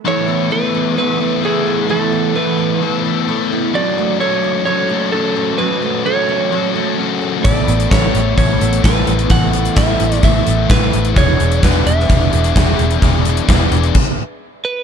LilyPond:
<<
  \new Staff \with { instrumentName = "Lead electric guitar" } { \time 4/4 \key a \major \tempo 4 = 130 cis''4 b'4 b'4 gis'4 | a'4 b'4. r4. | d''4 cis''4 cis''4 a'4 | b'4 cis''4. r4. |
d''4 cis''4 cis''4 b'4 | fis''4 e''4 e''4 b'4 | cis''4 b'8 e''2~ e''8~ | e''2. r8 b'8 | }
  \new Staff \with { instrumentName = "Overdriven electric guitar" } { \time 4/4 \key a \major <a b e' a'>4 <a b e' a'>4 <a b e' a'>8 <b e' a'>8 <a b e' a'>4 | <a b e' a'>4 <a b e' a'>4 <a b e' a'>8 <b e' a'>8 <a b e' a'>4 | <fis cis' fis' a'>4 <fis cis' fis' a'>4 <fis cis' fis' a'>8 <cis' fis' a'>8 <fis cis' fis' a'>4 | <fis cis' fis' a'>4 <fis cis' fis' a'>4 <fis cis' fis' a'>8 <cis' fis' a'>8 <fis cis' fis' a'>4 |
<a b e' a'>4 <a b e' a'>4 <a b e' a'>8 <b e' a'>8 <a b e' a'>4 | <a b e' a'>4 <a b e' a'>4 <a b e' a'>8 <b e' a'>8 <a b e' a'>4 | <e b d' gis'>4 <e b d' gis'>4 <e b d' gis'>8 <b d' gis'>8 <e b d' gis'>4 | <e b d' gis'>4 <e b d' gis'>4 r2 | }
  \new Staff \with { instrumentName = "Clean electric guitar" } { \time 4/4 \key a \major <a b e' a'>8 <b e' a'>8 <a b e' a'>4. <b e' a'>8 <a b e' a'>8 <b e' a'>8 | <a b e' a'>8 <b e' a'>8 <a b e' a'>4. <b e' a'>8 <a b e' a'>8 <b e' a'>8 | <fis a cis'>8 <a cis'>8 <fis a cis'>4. <a cis'>8 <fis a cis'>8 <a cis'>8 | <fis a cis'>8 <a cis'>8 <fis a cis'>4. <a cis'>8 <fis a cis'>8 <a cis' gis'>8 |
<a b e' a'>8 <b e' a'>8 <a b e' a'>4. <b e' a'>8 <a b e' a'>8 <b e' a'>8 | <a b e' a'>8 <b e' a'>8 <a b e' a'>4. <b e' a'>8 <a b e' a'>8 <b e' a'>8 | <e gis b e' gis' d''>8 <b e' gis' d''>8 <b e' gis' d''>4. <b e' gis' d''>8 <b e' gis' d''>8 <b e' gis' d''>8 | <e gis b e' gis' d''>8 <b e' gis' d''>8 <b e' gis' d''>4 r2 | }
  \new Staff \with { instrumentName = "Twelve-string acoustic guitar" } { \time 4/4 \key a \major e8 b8 e8 b8 e8 e8 e'8 b8 | e8 b8 e8 b8 e8 e8 e'8 b8 | fis8 a8 a8 cis'8 fis8 a4 cis'8 | fis8 a8 a8 cis'8 fis8 a4 cis'8 |
e8 b8 b8 e'8 e8 b8 a'8 e'8 | e8 b8 b8 e'8 e8 b8 a'8 e'8 | b8 d'8 b8 d'8 b8 b8 gis'8 d'8 | b8 d'8 b8 d'8 r2 | }
  \new Staff \with { instrumentName = "Fingered electric bass" } { \clef bass \time 4/4 \key a \major r1 | r1 | r1 | r1 |
a,,8 a,,8 a,,8 a,,8 a,,8 a,,8 a,,8 a,,8 | a,,4 a,,8 a,,8 a,,8 a,,8 a,,8 a,,8 | e,,8 e,,8 e,,8 e,,8 e,,8 e,,8 e,,8 e,,8 | e,,4 e,,8 e,,8 r2 | }
  \new DrumStaff \with { instrumentName = "Drums" } \drummode { \time 4/4 r4 r4 r4 r4 | r4 r4 r4 r4 | r4 r4 r4 r4 | r4 r4 r4 r4 |
<hh bd>8 hh16 hh16 <hh bd sn>8 hh8 <hh bd>8 hh16 hh16 <hh bd sn>8 hh16 hh16 | <hh bd>8 hh16 hh16 <hh bd sn>8 hh16 <hh sn>16 <hh bd>8 hh8 <hh bd sn>8 hh16 hh16 | <hh bd>8 hh16 hh16 <hh bd sn>8 hh16 sn16 <hh bd>8 hh16 hh16 <hh bd sn>8 hh16 hh16 | <hh bd>8 hh16 hh16 <hh bd sn>8 hh16 hh16 <cymc bd>4 r4 | }
>>